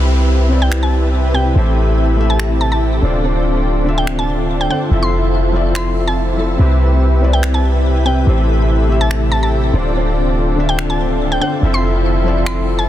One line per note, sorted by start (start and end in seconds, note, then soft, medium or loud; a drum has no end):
0.00 1.54 C2 medium
0.00 0.47 C3 medium
0.00 2.99 C3 medium
0.00 0.48 C4 medium
0.00 1.53 C4 medium
0.00 0.49 E4 medium
0.00 1.53 E4 medium
0.00 1.54 E4 medium
0.00 1.53 G4 medium
0.00 0.49 B4 medium
0.00 1.53 B4 medium
0.00 1.54 B4 medium
0.00 1.53 E5 medium
0.49 1.31 C3 medium
0.49 1.32 C4 medium
0.49 1.33 E4 medium
0.49 1.33 D5 loud
0.62 0.73 G5 medium
0.72 finger snap medium
0.83 0.94 A5 medium
1.34 1.53 C3 medium
1.34 1.53 C4 medium
1.34 1.53 E4 medium
1.34 1.54 B4 medium
1.34 1.47 G5 medium
1.54 3.01 A1 medium
1.54 2.15 A3 medium
1.54 3.01 A3 medium
1.54 3.00 C4 medium
1.54 2.16 E4 medium
1.54 3.00 E4 medium
1.54 3.00 G4 medium
1.54 3.01 G4 medium
1.54 2.17 G4 medium
1.54 3.00 A4 medium
1.54 2.17 C5 medium
1.54 3.00 E5 medium
2.17 2.99 A3 medium
2.17 3.00 E4 medium
2.17 3.01 G4 medium
2.21 3.01 E5 medium
2.30 2.41 A5 medium
2.39 finger snap medium
2.61 2.68 A5 medium
2.72 2.78 A5 medium
3.02 4.68 D1 medium
3.02 3.20 D3 medium
3.02 4.89 D3 medium
3.02 4.89 C4 medium
3.02 3.21 D4 medium
3.02 4.89 D4 medium
3.02 4.89 F4 medium
3.02 3.21 F4 medium
3.02 4.89 A4 medium
3.02 3.22 C5 medium
3.02 4.89 D5 medium
3.21 3.83 D3 medium
3.21 3.84 D4 medium
3.21 3.84 F4 medium
3.25 3.85 C5 medium
3.84 4.67 D3 medium
3.84 4.68 D4 medium
3.84 4.68 F4 medium
3.88 4.69 E5 loud
3.98 4.09 G5 medium
4.07 finger snap medium
4.19 4.30 A5 medium
4.61 4.68 G5 medium
4.69 4.88 D3 medium
4.69 4.89 D4 medium
4.69 4.89 F4 medium
4.69 4.89 C5 medium
4.69 4.83 G5 medium
4.89 6.57 F1 medium
4.89 5.51 F3 medium
4.89 6.58 A3 medium
4.89 5.52 C4 medium
4.89 6.57 C4 medium
4.89 6.57 E4 medium
4.89 6.57 F4 medium
4.89 6.57 A4 medium
4.89 6.57 E5 medium
4.89 5.52 E5 medium
4.93 5.53 A4 medium
5.03 5.14 C6 medium
5.52 6.35 F3 medium
5.52 6.35 C4 medium
5.52 6.36 E5 medium
5.56 6.37 D5 medium
5.75 6.05 C6 medium
5.75 finger snap medium
6.08 6.38 A5 medium
6.37 6.56 F3 medium
6.37 6.57 C4 medium
6.37 6.57 E4 medium
6.37 6.57 A4 medium
6.57 8.25 C2 medium
6.57 7.19 C3 medium
6.57 9.71 C3 medium
6.57 7.19 C4 medium
6.57 8.25 C4 medium
6.57 8.25 E4 medium
6.57 7.20 E4 medium
6.57 8.25 G4 medium
6.57 8.25 B4 medium
6.57 8.25 E5 medium
6.61 7.21 B4 medium
7.20 8.03 C3 medium
7.20 8.03 C4 medium
7.20 8.04 E4 medium
7.20 8.05 D5 loud
7.33 7.45 G5 medium
7.43 finger snap medium
7.54 7.66 A5 medium
8.05 8.24 C3 medium
8.05 8.24 C4 medium
8.05 8.25 E4 medium
8.05 8.25 B4 medium
8.05 8.19 G5 medium
8.25 9.72 A1 medium
8.25 8.86 A3 medium
8.25 9.72 A3 medium
8.25 9.71 C4 medium
8.25 8.87 E4 medium
8.25 9.71 E4 medium
8.25 9.71 G4 medium
8.25 9.72 G4 medium
8.25 8.88 G4 medium
8.25 9.71 A4 medium
8.25 8.89 C5 medium
8.25 9.71 E5 medium
8.88 9.71 A3 medium
8.88 9.71 E4 medium
8.88 9.72 G4 medium
8.88 9.72 E5 loud
9.01 9.12 A5 medium
9.11 finger snap medium
9.32 9.39 A5 medium
9.43 9.49 A5 medium
9.73 11.40 D1 medium
9.73 9.91 D3 medium
9.73 11.61 D3 medium
9.73 11.60 C4 medium
9.73 11.61 C4 medium
9.73 9.92 D4 medium
9.73 11.60 D4 medium
9.73 11.60 F4 medium
9.73 9.93 F4 medium
9.73 11.60 A4 medium
9.73 9.93 C5 medium
9.73 11.60 D5 medium
9.93 10.54 D3 medium
9.93 10.55 D4 medium
9.93 10.56 F4 medium
9.97 10.56 C5 medium
10.56 11.38 D3 medium
10.56 11.39 D4 medium
10.56 11.40 F4 medium
10.60 11.40 E5 loud
10.69 10.80 G5 medium
10.79 finger snap medium
10.90 11.01 A5 medium
11.32 11.40 G5 medium
11.41 11.60 D3 medium
11.41 11.60 D4 medium
11.41 11.61 F4 medium
11.41 11.61 C5 medium
11.41 11.54 G5 medium
11.61 12.89 F1 medium
11.61 12.22 F3 medium
11.61 12.89 A3 medium
11.61 12.23 C4 medium
11.61 12.89 C4 medium
11.61 12.89 E4 medium
11.61 12.89 F4 medium
11.61 12.89 A4 medium
11.61 12.89 E5 medium
11.61 12.24 E5 medium
11.65 12.24 A4 medium
11.74 11.85 C6 medium
12.24 12.89 F3 medium
12.24 12.89 C4 medium
12.24 12.89 E5 medium
12.28 12.89 D5 loud
12.46 12.76 C6 medium
12.46 finger snap medium
12.79 12.89 A5 medium